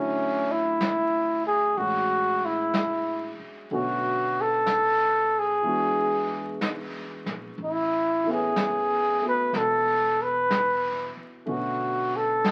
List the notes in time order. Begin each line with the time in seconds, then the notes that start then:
Already playing: D2 D3 F#3 A3 C#4 E4
0.52 E4
0.81 brush sweep, snare, hi-hat pedal
1.46 G#4
1.77 A1 G#3 C#4 F#4, brush sweep
2.45 E4
2.74 brush sweep, snare, hi-hat pedal
3.40 muted upright bass stroke
3.70 B1 D3 A3 B3 C#4 F#4, brush sweep
4.41 A4
4.66 brush sweep, snare, hi-hat pedal
5.39 G#4
5.62 E2 E3 G#3 B3, brush sweep
5.66 D4 F#4
6.61 brush sweep, snare, hi-hat pedal
7.26 A#1, snare
7.58 A1, brush sweep
7.64 E4
8.24 E3 A3 B3
8.29 C#4 G#4 B4
8.56 brush sweep, snare, hi-hat pedal
9.21 A3 B3 F#4
9.28 B4
9.53 E1, brush sweep, snare
9.57 A4
10.22 B4
10.51 brush sweep, snare, hi-hat pedal
11.17 muted upright bass stroke
11.46 B1 D3 A3 B3 C#4 F#4, brush sweep
11.50 F#4
12.16 A4
12.44 brush sweep, snare, hi-hat pedal